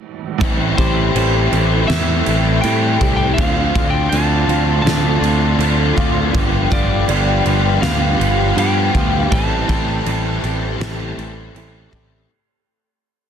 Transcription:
0.40 A1 A2 E3 G3 A3 C4 E4 A4 G5 C6, kick, crash
0.78 A1 G3 A3 C4 E4 G4 C5, kick, crash
1.15 A1 E3 G3 A3 C4 E4, crash
1.52 A1 G3 A3 C4 E4 G4, crash
1.88 E2 A2 E3 G3 A3 C4 E4 E5, snare, crash
2.26 A1 E3 A3 C4 E4, crash
2.31 G3
2.62 A2 E3 A3 C4 G5, crash
2.66 G3 E4
3.00 C2 G3 A3 C4 E4 G4, kick, crash
3.17 G5
3.34 D3 A3 F5
3.38 D2 F3 C4 D4 F4 D5, kick, crash
3.74 D2 A3 C4 D4 F4, kick, crash
3.90 G5
4.09 D2 D3 A3 C4 D4 F4 A5, crash
4.14 C4
4.48 D2 A3 C4 D4 F4, crash
4.82 D2 A5
4.86 D3 A3 C4 D4 F4, snare, crash
5.21 D2 F3 A3 C4 D4 F4, crash
5.58 D2 D3 A3 C4, crash
5.62 D4 F4
5.93 D2 C4 F4
5.98 A3 D4 F4, kick, crash
6.34 G1 G2 D3 F3 G3 B3 F4 G4 F5 B5, kick, crash
6.70 G1 F3 G3 B3 F4 G4 D5, kick, crash
7.08 G1 D3 F3 G3 B3 D4 F4, crash
7.12 G4
7.45 G1 B3 F4 G4, crash
7.49 F3 G3
7.82 D2 G2 D3 F3 G3 B3 F4 G4 F5, snare, crash
8.18 G1 F3 G3 B3 F4 G4, crash
8.23 F3
8.55 G2 D3 F3 G3 B3 F4 G4 G5, crash
8.60 B3
8.93 D2 F3 G3 B3 F4 G4, kick, crash
9.31 A1 A2 E3 G3 C4 E4 A4 G5 A5 C6, kick, crash
9.68 A1 G3 C4 E4 G4 A4, kick, crash
10.05 A1 E3 G3 C4 E4 A4, crash
10.42 A1 G3 C4 E4 G4 A4, crash
10.78 A1 A2 E3 G3 A3 C4 E4 A4, snare, crash
11.18 A1 E3 G3 C4 E4 A4, crash
11.55 A1 E3 G3 A3 C4, crash
11.59 E4 A4
11.91 A1 G3 E4 G4 A4, kick, crash
11.96 C4

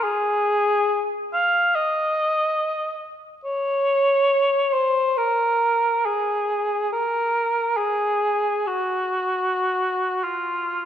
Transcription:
0.04 G#4
1.33 F5
1.75 D#5
3.44 C#5
4.73 C5
5.17 A#4
6.06 G#4
6.93 A#4
7.77 G#4
8.67 F#4
10.24 F4

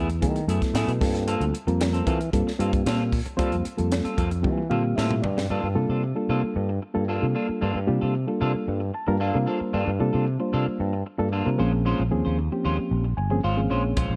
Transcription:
Already playing: E2
0.10 muted clean electric guitar stroke, closed hi-hat
0.22 D#3 F#3 A3 B3 E4 G#4, kick, closed hi-hat
0.36 muted clean electric guitar stroke, closed hi-hat
0.47 F#2 F#3 A3 B3 E4 G#4 A4, closed hi-hat
0.62 muted clean electric guitar stroke, kick, snare, closed hi-hat
0.74 A2 A3 B3 E4 G#4, snare, closed hi-hat
0.88 B2, closed hi-hat
1.01 G2 G3 A#3 C4 F4 A4, muted clean electric guitar stroke, kick, snare, open hi-hat
1.15 muted clean electric guitar stroke, snare, closed hi-hat
1.27 A#3 C4 F4 A4, closed hi-hat
1.41 D2, closed hi-hat
1.54 muted clean electric guitar stroke, closed hi-hat
1.67 F2 G3 A#3 C4 F4 A#4, muted clean electric guitar stroke, closed hi-hat
1.80 muted clean electric guitar stroke, snare, closed hi-hat
1.93 C4 F4 A4, closed hi-hat
2.07 E3 A#3 C4 F4 A4, kick, closed hi-hat
2.20 muted clean electric guitar stroke, closed hi-hat
2.33 G2 G3 A#3 C4 F4 A4, kick, closed hi-hat
2.47 muted fretless electric bass stroke, muted clean electric guitar stroke, snare
2.59 G2 G3 A#3 C4 F4 G4 A4, closed hi-hat
2.73 muted clean electric guitar stroke, kick, closed hi-hat
2.86 A#2 A#3 C4 F4 A4, snare, closed hi-hat
3.12 muted clean electric guitar stroke, kick, open hi-hat
3.26 muted clean electric guitar stroke, muted fretless electric bass stroke, closed hi-hat
3.37 G3 A#3 C4 F4 A4 C5, kick, closed hi-hat
3.52 F2, closed hi-hat
3.65 muted clean electric guitar stroke, muted fretless electric bass stroke, closed hi-hat
3.77 F2 G3 A#3 C4 F4 A4, muted clean electric guitar stroke, closed hi-hat
3.91 muted clean electric guitar stroke, snare, closed hi-hat
4.04 C4 F4 A4, muted fretless electric bass stroke, closed hi-hat
4.17 F2 A#3 C4 F4 A4, kick, closed hi-hat
4.31 muted clean electric guitar stroke, closed hi-hat
4.42 E3 G3 A#3 C4 F4 G4, kick, high tom
4.58 muted clean electric guitar stroke
4.70 A#2 G3 A#3 C4 F4 G4 A4 F5, mid tom
4.84 muted clean electric guitar stroke
4.96 A2 A#3 C4 F4 A4 E5, snare
5.11 mid tom
5.22 G2 D5, muted clean electric guitar stroke, floor tom
5.37 muted clean electric guitar stroke, snare
5.50 G2 A#3 D4 F4 A4
5.64 G2
5.75 C3 G3 A#3 D4 F4 A4, muted clean electric guitar stroke
5.89 C3 D4 F4 A4
6.04 muted clean electric guitar stroke
6.15 G3 A#3 D4 F4 A4, muted clean electric guitar stroke
6.29 C3 A#3 D4 F4 A4
6.43 muted clean electric guitar stroke, muted fretless electric bass stroke
6.56 G2
6.69 muted clean electric guitar stroke
6.82 muted clean electric guitar stroke
6.94 G2 G3 A#3 D4 F4 A4, muted clean electric guitar stroke
7.07 A#3 D4 F4 A4
7.21 C3 G3 A#3 D4 F4 A4
7.35 A#3 D4 F4 A4
7.49 muted clean electric guitar stroke, muted fretless electric bass stroke
7.61 G2 A#3 D4 F4 A4
7.75 G2
7.87 C3 G3 A#3 D4 F4 G4, muted clean electric guitar stroke
8.01 C3 D4 F4 A4
8.14 muted clean electric guitar stroke
8.27 G3 A#3 D4 F4 A4, muted clean electric guitar stroke
8.41 C3 A#3 D4 F4 A4
8.55 muted fretless electric bass stroke
8.68 G2
8.80 muted clean electric guitar stroke
8.94 A5, muted clean electric guitar stroke
9.07 G2 G3 A#3 D4 F4 A#4, muted clean electric guitar stroke
9.20 A#3 D4 F4 A4 A#4 F5
9.34 C3 G3 A#3 D4 F4 A#4
9.46 A#3 D4 F4 A4 C5
9.60 muted clean electric guitar stroke, muted fretless electric bass stroke
9.73 G2 A#3 D4 F4 A4
9.88 G2
9.99 C3 G3 A#3 D4 F4 A4, muted clean electric guitar stroke
10.13 C3 D4 F4 A4
10.26 muted clean electric guitar stroke
10.39 G3 A#3 D4 F4 C5, muted clean electric guitar stroke
10.53 C3 A#3 D4 F4 A4
10.67 muted clean electric guitar stroke, muted fretless electric bass stroke
10.80 G2
10.93 muted clean electric guitar stroke
11.06 muted clean electric guitar stroke
11.18 G2 G3 A#3 D4 F4 A4, muted clean electric guitar stroke
11.32 A#3 D4 F4 A4
11.45 C3 G3 A#3 D4 F4 A#4
11.58 A#1 F3 G#3 A#3 C4 C#4 F4 G#4 C5
11.73 muted clean electric guitar stroke
11.85 G#3 C#4 F4 C5
12.00 A#1
12.11 D#2 F3 A#3 C4 C#4 G#4, muted clean electric guitar stroke
12.25 D#2 C#4 F4 C5
12.38 muted clean electric guitar stroke
12.52 F3 A#3 C4 C#4 G4, muted clean electric guitar stroke
12.65 D#2 G#3 C#4 F4 C5
12.78 muted fretless electric bass stroke, muted clean electric guitar stroke
12.91 A#1
13.04 muted clean electric guitar stroke
13.17 G1 G#5, muted clean electric guitar stroke
13.30 F3 A#3 C4 C#4 G#4, muted clean electric guitar stroke
13.43 G#1 G#3 C#4 F4 G#4 C5 F5
13.56 F3 A#3 C4 C#4 G#4
13.70 A#1 G#3 C#4 F4 C5 C#5
13.84 muted clean electric guitar stroke
13.96 A#1 G#3 C#4 F4 C5, kick, closed hi-hat
14.10 A#1

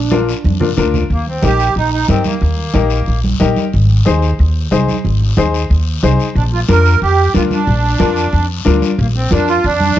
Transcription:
Already playing: A#1 D4
0.11 D4 F4 A#4, high conga, short guiro
0.29 short guiro
0.44 F2, high conga, long guiro
0.60 D4 F4 A#4, low conga
0.77 D2 D4 F4 A#4, low conga, short guiro
0.94 low conga, short guiro
1.10 D#2 A#3, long guiro
1.27 C4, high conga
1.42 A#1 D#4 G4 A#4, high conga, short guiro
1.59 short guiro
1.75 A#1 D#4, high conga, long guiro
1.92 D#4
2.08 G2 C4 D#4 G4 A#4, high conga, short guiro
2.24 A#3, high conga, short guiro
2.41 D#2, long guiro
2.58 high conga
2.74 A#1 D#4 G4 A#4, high conga, short guiro
2.90 short guiro
3.06 A#1, high conga, long guiro
3.24 high conga
3.40 A#1 D#4 G4 A#4, high conga, short guiro
3.57 high conga, short guiro
3.73 G#1, long guiro
3.90 high conga
4.05 D#2 D#4 G#4 C5, high conga, short guiro
4.22 short guiro
4.39 D#2, high conga, long guiro
4.71 C2 D#4 G#4 C5, high conga, short guiro
4.88 high conga, short guiro
5.05 G#1, long guiro
5.21 high conga
5.37 D#2 D#4 G#4 C5, high conga, short guiro
5.54 short guiro
5.70 D#2, high conga, long guiro
6.03 C2 D#4 G#4 C5, high conga, short guiro
6.19 short guiro
6.35 A#1 D4, long guiro
6.52 F4, high conga
6.68 F2 D4 F4 A#4, high conga, short guiro
6.86 short guiro
7.02 F2 G4, high conga, long guiro
7.34 D2 D4 F4 A#4, high conga, short guiro
7.51 D4, high conga, short guiro
7.67 A#1, long guiro
7.84 high conga
7.99 F2 D4 F4 A#4, high conga, short guiro
8.16 short guiro
8.33 F2, high conga, long guiro
8.65 D2 D4 F4 A#4, high conga, short guiro
8.82 high conga, short guiro
8.99 A#1 A#3, long guiro
9.15 C4, high conga
9.31 F2 D4 F4 A#4, high conga, short guiro
9.48 F4, short guiro
9.64 F2 D4, high conga, long guiro
9.80 high conga

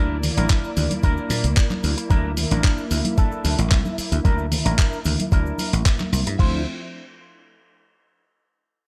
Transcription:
Already playing: D2 A#3 D4 E4 A#4 D5
0.23 open hi-hat, high bongo, low conga, cabasa
0.37 A1 D4 E4 A#4, closed hi-hat, high conga, cabasa
0.49 kick, clap, closed hi-hat, cabasa
0.64 cabasa
0.77 D2, open hi-hat, low conga, cabasa
0.91 closed hi-hat, high conga, cabasa
1.03 D2 D4 E4 A#4, kick, closed hi-hat, cabasa
1.17 muted slap bass stroke, high bongo, cabasa
1.29 A#2, open hi-hat, high conga, cabasa
1.44 D2, closed hi-hat, cabasa
1.57 kick, clap, closed hi-hat, cabasa
1.70 clap, high conga, cabasa
1.83 D2, muted clean electric guitar stroke, open hi-hat, cabasa
1.97 muted clean electric guitar stroke, closed hi-hat, cabasa
2.10 D2 D4 E4 A#4 E5, kick, closed hi-hat, high conga, cabasa
2.37 open hi-hat, high bongo, low conga, cabasa
2.51 A1 D4 E4 A#4, closed hi-hat, high conga, cabasa
2.64 kick, clap, closed hi-hat, cabasa
2.78 cabasa
2.91 D2, open hi-hat, cabasa
3.04 closed hi-hat, high conga, cabasa
3.17 D4 E4 A4, kick, closed hi-hat, cabasa
3.32 cabasa
3.44 D2, open hi-hat, high conga, cabasa
3.58 A1, closed hi-hat, high bongo, cabasa
3.71 C2, kick, clap, closed hi-hat, cabasa
3.85 high conga, cabasa
3.98 muted clean electric guitar stroke, muted slap bass stroke, open hi-hat, cabasa
4.12 D2, muted clean electric guitar stroke, closed hi-hat, cabasa
4.24 D2 D4 E4 A#4, kick, closed hi-hat, high conga, cabasa
4.38 cabasa
4.52 open hi-hat, high bongo, low conga, cabasa
4.65 A1 D4 E4 A#4, closed hi-hat, high conga, cabasa
4.78 kick, clap, closed hi-hat, cabasa
4.93 cabasa
5.05 D2, open hi-hat, low conga, cabasa
5.19 closed hi-hat, high conga, cabasa
5.32 D2 D4 E4 A#4, kick, closed hi-hat, cabasa
5.45 high bongo, cabasa
5.58 open hi-hat, high conga, cabasa
5.73 A1, closed hi-hat, cabasa
5.86 kick, clap, closed hi-hat, cabasa
5.99 clap, high conga, cabasa
6.12 C2, muted clean electric guitar stroke, open hi-hat, cabasa
6.26 G2, muted clean electric guitar stroke, closed hi-hat, cabasa
6.38 D2 F3 A3 C4 D4 E4 F4 C5 E5, kick, crash

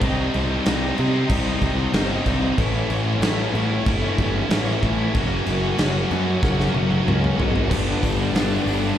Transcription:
Already playing: G5
0.01 C2 C3 G3 C4 C5 D#5 D#6, kick, crash
0.06 D#4
0.34 C2 C3 G3 C4 D#4, crash
0.50 G3 C4 D#4
0.66 C2 C3 G3 C4 D#4, snare, crash
0.70 D#4
0.97 C3 G3 C4 D#4, crash
1.12 D#4, muted distorted electric guitar stroke
1.17 G3 C4
1.30 C2 C3 G3 C4 D#4, kick, crash
1.34 D#4
1.47 G3 C4 D#4
1.61 C2 C3 G3 C4 D#4, kick, crash
1.77 C4 D#4, muted distorted electric guitar stroke
1.82 G3
1.94 G1 C3 G3 C4 D#4, snare, crash
2.08 G3 C4 D#4
2.26 C2 C3 G3 C4 D#4, kick, crash
2.42 G3 C4 D#4
2.57 A1 A2 E3 A3 C#4 A4 C#5 E5 C#6, kick, crash
2.61 E4
2.89 A1 E3 A3 C#4 E4, crash
3.05 A3 C#4 E4
3.09 A3
3.21 A1 A2 E3 A3 C#4 E4, snare, crash
3.53 A1 A2 E3 A3 C#4 E4, crash
3.69 A3 C#4 E4, muted distorted electric guitar stroke
3.86 G1 A2 E3 A3 C#4 E4, kick, crash
4.03 A3 C#4 E4
4.18 G1 E3 A3 C#4, kick, crash
4.23 E4
4.35 A3 C#4 E4, muted distorted electric guitar stroke
4.50 A1 A2 E3 A3 C#4, snare, crash
4.54 E4
4.66 A3 C#4 E4
4.82 A1 A2 E3 A3 C#4, kick, crash
4.86 E4
4.98 A3 C#4 E4
5.14 F#1 F#3 A#3 C#4 F#4 A#4 C#5 F#5, kick, crash
5.45 F#1 F#3 A#3 C#4 F#4, crash
5.62 A#3 C#4 F#4
5.77 F#1 F#3 A#3 C#4 F#4, snare, crash
6.09 F#2 F#3 A#3 C#4 F#4, crash
6.25 A#3 C#4 F#4, muted distorted electric guitar stroke
6.42 F#1 F#3 A#3 C#4 F#4, kick, snare
6.57 A#3 C#4 F#4, snare
6.74 F#1 F#3 A#3 C#4 F#4, high tom
6.89 A#3 C#4 F#4, muted distorted electric guitar stroke, high tom
7.05 C#2 F#3 A#3 C#4, mid tom
7.09 F#4
7.23 A#3 C#4 F#4, mid tom
7.37 G#1 F#3 A#3 C#4 F#4, floor tom
7.53 A#3 C#4 F#4, floor tom
7.68 G1 G2 D3 G3 B4 D5 G5 D6, kick, crash
7.73 B3 D4
8.02 G1 D3 G3 B3 D4, kick, open hi-hat
8.18 G3 B3 D4
8.33 G1 G2 D3 G3 B3, snare, open hi-hat
8.37 D4
8.66 G1 G2 D3 G3 B3 D4, open hi-hat
8.82 B3 D4, muted distorted electric guitar stroke
8.86 G3

